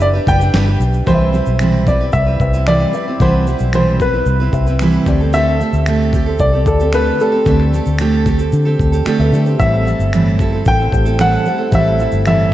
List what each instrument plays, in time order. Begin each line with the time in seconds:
Already playing: fingered electric bass F#1, steel-string acoustic guitar D4 G4 B4, felt piano D4 G4 B4 E5 G5
0.00 upright piano D5, shaker
0.13 steel-string acoustic guitar D4 G4 B4
0.26 fingered electric bass F#1, steel-string acoustic guitar G3 D4 G4 B4, upright piano G5, kick, shaker
0.40 steel-string acoustic guitar D4 G4 B4, shaker
0.53 fingered electric bass G1, steel-string acoustic guitar G3 D4 G4 B4, snare, shaker
0.66 steel-string acoustic guitar D4 G4 B4
0.80 fingered electric bass B1, shaker
0.93 shaker
1.06 fingered electric bass C2, steel-string acoustic guitar C3 E3 G3 C4 E4 B4, felt piano C4 D#5 B5, upright piano C5, kick, shaker
1.15 felt piano E5
1.33 steel-string acoustic guitar G3 C4 E4 B4, shaker
1.46 fingered electric bass B1, shaker
1.59 steel-string acoustic guitar C3 E3 G3 C4 E4 B4, finger snap, shaker
1.86 steel-string acoustic guitar G3 C4 E4 B4, upright piano D5, kick, shaker
2.01 steel-string acoustic guitar G3 C4 E4 B4
2.12 fingered electric bass C2, upright piano E5, kick, shaker
2.26 steel-string acoustic guitar G3 C4 E4 B4
2.40 fingered electric bass C2, felt piano C4 B4 E5, kick, shaker
2.53 steel-string acoustic guitar G3 C4 E4 B4, shaker
2.66 steel-string acoustic guitar C3 E3 G3 C4 E4 B4, upright piano D5, finger snap, shaker
2.92 steel-string acoustic guitar G3 C4 E4, felt piano C4 B4 E5, shaker
2.97 steel-string acoustic guitar B4
3.07 steel-string acoustic guitar G3 C4 E4 B4
3.19 fingered electric bass C2, steel-string acoustic guitar C3 E3 G3 C4 E4 B4, felt piano C4 F#5 B5, upright piano C5, kick, shaker
3.46 steel-string acoustic guitar G3 C4 E4 B4, shaker
3.59 fingered electric bass B1, shaker
3.73 steel-string acoustic guitar C3 E3 G3 C4 E4 B4, upright piano C5, finger snap, shaker
3.99 steel-string acoustic guitar G3 C4 E4 B4, upright piano B4, kick, shaker
4.13 steel-string acoustic guitar G3 C4 E4 B4
4.26 fingered electric bass C2, shaker
4.40 steel-string acoustic guitar G3 C4 E4 B4
4.52 fingered electric bass C2, felt piano C4 B4 E5, kick, shaker
4.67 steel-string acoustic guitar G3 C4 E4 B4, shaker
4.79 steel-string acoustic guitar C3 E3 G3 C4 E4 B4, finger snap, shaker
5.06 fingered electric bass D2, steel-string acoustic guitar A3 C4 G4 A4, felt piano C4 G4 D5, kick, shaker
5.21 steel-string acoustic guitar C4 G4 A4
5.33 steel-string acoustic guitar D3 A3 C4 G4 A4, upright piano E5, shaker
5.60 steel-string acoustic guitar A3 C4 G4 A4, shaker
5.73 fingered electric bass D2, shaker
5.86 steel-string acoustic guitar D3 A3 C4 G4 A4, finger snap, shaker
6.13 steel-string acoustic guitar A3 C4 G4 A4, kick, shaker
6.26 steel-string acoustic guitar C4 G4 A4
6.39 fingered electric bass C2, upright piano D5, kick, shaker
6.53 steel-string acoustic guitar C4 G4 A4
6.66 fingered electric bass D2, felt piano C4 G4 D5, upright piano A4, kick, shaker
6.80 steel-string acoustic guitar C4 G4 A4, shaker
6.93 steel-string acoustic guitar D3 A3 C4 G4 A4, upright piano B4, finger snap, shaker
7.18 steel-string acoustic guitar A3 C4 G4 A4, felt piano C4 G4 D5, upright piano A4, shaker
7.32 steel-string acoustic guitar C4 G4 A4
7.45 fingered electric bass D2, steel-string acoustic guitar D3 A3 C4 G4 A4, felt piano C4 G4 D5, kick, shaker
7.60 finger snap
7.72 steel-string acoustic guitar A3 C4 G4 A4, shaker
7.86 fingered electric bass D2, shaker
7.98 steel-string acoustic guitar D3 A3 C4 G4 A4, finger snap, shaker
8.26 steel-string acoustic guitar A3 C4 G4 A4, kick, shaker
8.38 steel-string acoustic guitar C4 G4 A4, shaker
8.52 fingered electric bass D3, shaker
8.65 steel-string acoustic guitar C4 G4 A4
8.79 fingered electric bass D2, kick, shaker
8.92 steel-string acoustic guitar C4 G4 A4, shaker
9.05 steel-string acoustic guitar D3 A3 C4 G4 A4, felt piano D5 G5, finger snap, muted fingered electric bass stroke, shaker
9.19 fingered electric bass D2, felt piano B4 E5
9.32 fingered electric bass D3, steel-string acoustic guitar A3 C4 G4 A4, felt piano A4 D5, shaker
9.46 steel-string acoustic guitar C4 G4 A4, felt piano G4 C5, shaker
9.58 fingered electric bass A1, steel-string acoustic guitar A2 E3 G3 C4 E4 A4, felt piano A3 G4 C5, upright piano E5, kick, shaker
9.85 steel-string acoustic guitar G3 C4 E4 A4, shaker
9.99 fingered electric bass G1, shaker
10.13 steel-string acoustic guitar A2 E3 G3 C4 E4 A4, finger snap, shaker
10.39 steel-string acoustic guitar G3 C4 E4 A4, kick, shaker
10.52 steel-string acoustic guitar G3 C4 E4 A4
10.65 fingered electric bass A1, upright piano G5, kick, shaker
10.79 steel-string acoustic guitar G3 C4 E4 A4
10.91 fingered electric bass A1, felt piano A3 G4 C5, kick, shaker
11.05 steel-string acoustic guitar G3 C4 E4 A4, shaker
11.18 steel-string acoustic guitar A2 E3 G3 C4 E4 A4, upright piano F#5, finger snap, shaker
11.44 steel-string acoustic guitar G3 C4 E4 A4, felt piano A3 G4 C5, shaker
11.58 steel-string acoustic guitar G3 C4 E4 A4
11.71 fingered electric bass A1, steel-string acoustic guitar A2 E3 G3 C4 E4 A4, felt piano A3 G4 C5, upright piano E5, kick, shaker
11.99 steel-string acoustic guitar G3 C4 E4 A4, shaker
12.12 fingered electric bass G1, shaker
12.25 steel-string acoustic guitar A2 E3 G3 C4 E4 A4, upright piano E5, finger snap, shaker